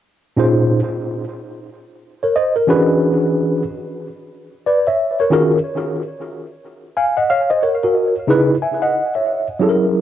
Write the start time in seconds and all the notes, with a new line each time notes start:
0.36 A#2 C#4 D#4 F4 G#4 C5
2.23 A#4 C#5
2.36 C5 D#5
2.56 A#4
2.67 E3 C#4 D4 F#4 G#4 B4
4.66 B4 D5
4.87 C#5 E5
5.20 A#4 C#5
5.30 D#3 C#4 F4 F#4 G#4 A#4
6.97 F5 G#5
7.17 D#5 F#5
7.30 C#5 F5
7.50 C5 D#5
7.63 A#4 C#5
7.84 F#4 A#4
8.27 C#3 D#4 E4 G#4 B4
8.62 E5 G#5
8.82 D#5 F#5
9.15 C#5 E5
9.59 F#3 C#4 E4 G#4 A4
9.69 A#4